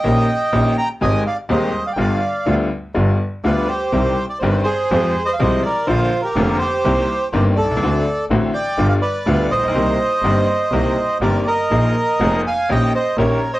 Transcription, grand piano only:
X:1
M:4/4
L:1/16
Q:1/4=124
K:Cm
V:1 name="Grand piano" clef=bass
[B,,,B,,E,B,_DG]2 z2 [B,,,B,,E,B,DG]2 z2 [A,,,A,,E,A,CG]2 z2 [E,,,E,,E,A,CG]2 z2 | [G,,,G,,D,G,=B,F]2 z2 [D,,D,G,B,F]2 z2 [G,,,G,,D,G,B,F]2 z2 [D,,D,G,B,F]2 z2 | [C,,C,E,G,CG]2 z2 [G,,,G,,E,G,CG]2 z2 [F,,F,A,CG]2 z2 [C,,C,F,A,CG]2 z2 | [B,,,B,,D,F,B,F]2 z2 [F,,,F,,D,F,B,F]2 z2 [C,,C,E,B,CG]2 z2 [G,,,G,,E,B,CG]2 z/2 =B,,,/2 C,,/2 _D,,/2 |
[D,,D,=A,C^F]2 z2 [=A,,,=A,,D,A,CF]2 z2 [G,,,G,,D,G,=B,=F]2 z2 [D,,D,G,B,F]2 z/2 A,,,/2 _B,,,/2 =B,,,/2 | [C,,C,E,B,CG]2 z2 [G,,,G,,E,B,CG]2 z2 [C,,C,E,B,CG]2 z2 [G,,,G,,E,B,CG]2 z2 | [B,,,B,,F,B,EA]2 z2 [F,,,F,,F,B,EA]2 z2 [B,,,B,,E,B,_DG]2 z2 [B,,,B,,E,B,DG]2 z2 |]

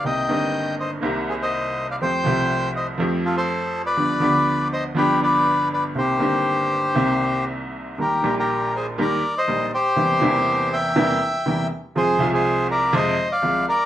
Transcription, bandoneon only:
X:1
M:4/4
L:1/16
Q:1/4=121
K:Cm
V:1 name="Bandoneon"
[eg]6 [ce]2 z2 [Ac] [ce]4 [df] | [cg]6 [ce]2 z2 [F=A] [Ac]4 [=Bd]- | [=Bd]6 [ce]2 [GB]2 [Bd]4 [Bd]2 | [Gc]12 z4 |
[K:Eb] [GB]3 [GB]3 [Ac]2 [Bd]3 [ce]3 [Gc]2- | [Gc]6 [=eg]8 z2 | [Ac]3 [Ac]3 [Bd]2 [ce]3 [df]3 [Bd]2 |]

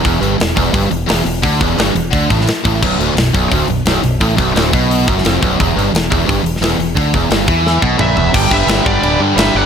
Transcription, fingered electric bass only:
X:1
M:4/4
L:1/8
Q:1/4=174
K:Edor
V:1 name="Fingered electric bass" clef=bass
E,,, G,,, E,,, E,,, G,,, E,,, E,,, E,,, | D,, E,,, G,,, E,,, D,, A,,, z A,,, | B,,,, D,,, B,,,, B,,,, D,,, B,,,, B,,,, B,,,, | A,,, B,,,, D,,, B,,,2 F,,, ^E,,, B,,,, |
E,,, G,,, E,,, E,,, G,,, E,,, E,,, E,,, | D,, E,,, G,,, E,,2 B,,, ^A,,, E,,, | G,,, G,,, G,,, G,,, D,,, G,, G,,, G,,, |]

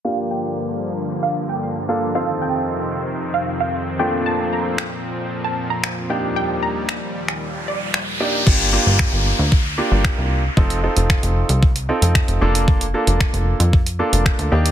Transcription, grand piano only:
X:1
M:4/4
L:1/8
Q:1/4=114
K:Gm
V:1 name="Grand piano"
[B,DFG]3 z4 [B,DFA] | [CEFA]3 z4 [F,A,B,DF]- | [F,A,B,DF]2 z4 z [B,DEG]- | [B,DEG]2 z4 z [B,DEG] |
[B,DFG] [B,DFG]3 z [B,DFG]2 z | [CEFA] [CEFA]3 z [CEFA]2 [B,DFA]- | [B,DFA] [B,DFA]3 z [B,DFA]2 [B,DEG] |]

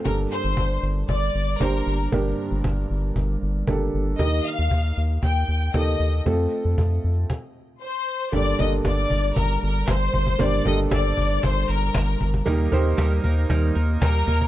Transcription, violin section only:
X:1
M:4/4
L:1/16
Q:1/4=116
K:Gm
V:1 name="Violin section"
B2 c4 z2 d4 B3 z | z16 | e2 f4 z2 g4 e3 z | z12 c4 |
d2 e2 d4 B2 B2 c4 | d2 e2 d4 c2 B4 z2 | z12 B4 |]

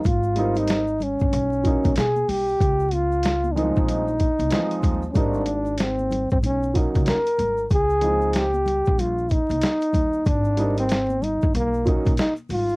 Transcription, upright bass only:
X:1
M:4/4
L:1/16
Q:"Swing 16ths" 1/4=94
K:Dblyd
V:1 name="Upright bass" clef=bass
A,,,6- A,,, G,,, _C,,3 C,, _C,2 C,,2 | D,,6- D,, B,,,4 C,, z2 E,,2 | A,,,6- A,,, G,,, _C,,3 D,, z2 A,,,2 | D,,6- D,, B,,,4 C,, z2 E,,2 |
A,,,6- A,,, G,,, _C,,3 C,, z2 A,,,2 |]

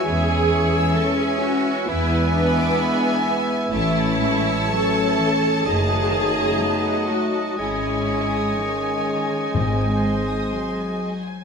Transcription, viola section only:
X:1
M:4/4
L:1/16
Q:1/4=62
K:G#phr
V:1 name="Viola section"
G4 A G F2 E2 =D4 z2 | E4 A4 G6 F2 | E4 D8- D2 z2 |]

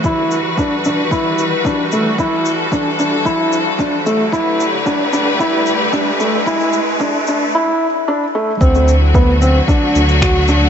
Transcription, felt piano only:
X:1
M:4/4
L:1/8
Q:1/4=112
K:Em
V:1 name="Felt piano"
E2 D D E2 D A, | E2 D D E2 D A, | E2 D D E2 D A, | E2 D D E2 D A, |
C2 B, C D2 F D |]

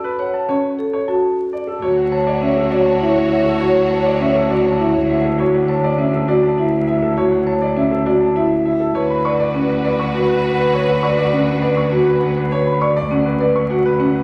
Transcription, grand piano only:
X:1
M:3/4
L:1/16
Q:1/4=101
K:D
V:1 name="Grand piano"
B f a c z2 c a z2 d A | c f a d e A d a e z e A | c f a d e A d a e z e A | c f a d e A d a e z e A |
c f a d e A d a e z e A | c b c' d f B d c' f B f B | c b c' d f B d c' f B f B | c b c' d f B d c' f B f B |]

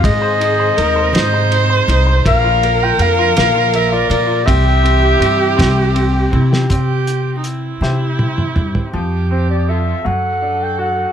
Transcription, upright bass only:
X:1
M:6/8
L:1/16
Q:3/8=54
K:Cmix
V:1 name="Upright bass" clef=bass
_A,,4 _E,,2 A,,4 C,,2 | B,,,4 F,,2 B,,,4 B,,2 | C,,4 G,,2 C,,4 C,2 | C,6 C,4 G,, z |
F,,6 ^F,,6 |]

